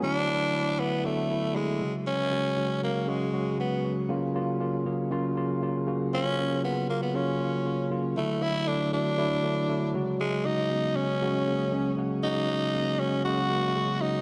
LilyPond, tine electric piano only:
\new Staff \with { instrumentName = "Tine electric piano" } { \clef bass \time 4/4 \key cis \mixolydian \tempo 4 = 118 <d fis a e'>8 <d fis a e'>8 <d fis a e'>8 <d fis a e'>8 <d fis a b>8 <d fis a e'>8 <d fis a e'>8 <cis fis gis fis'>8~ | <cis fis gis fis'>8 <cis fis gis fis'>8 <cis fis gis fis'>8 <cis fis gis fis'>8 <cis fis gis fis'>8 <cis fis gis fis'>8 <cis fis gis fis'>8 <cis fis gis fis'>8 | <cis fis ais eis'>8 <cis fis ais eis'>8 <cis fis ais eis'>8 <cis fis ais gis'>8 <cis fis ais eis'>8 <cis fis ais eis'>8 <cis fis ais eis'>8 <cis fis ais fis'>8 | <cis fis ais eis'>8 <cis fis ais cis'>8 <cis fis ais eis'>8 <cis fis ais eis'>8 <cis fis ais eis'>8 <cis fis ais eis'>8 <cis fis ais eis'>8 <cis fis ais eis'>8 |
<d fis a e'>8 <d fis a fis'>8 <d fis a e'>8 <d fis a fis'>8 <d fis a e'>8 <d fis a e'>8 <d fis a e'>8 <cis fis gis fis'>8~ | <cis fis gis fis'>8 <cis fis gis fis'>8 <cis fis gis b>8 <cis fis gis cis'>8 <cis fis gis fis'>8 <cis fis gis ais>8 <cis fis gis cis'>8 <cis fis gis fis'>8 | <cis fis gis fis'>8 <cis fis gis fis'>8 <cis fis gis ais>8 <cis fis gis fis'>8 <cis fis gis fis'>8 <cis fis gis ais>8 <cis fis gis fis'>8 <cis fis gis fis'>8 | }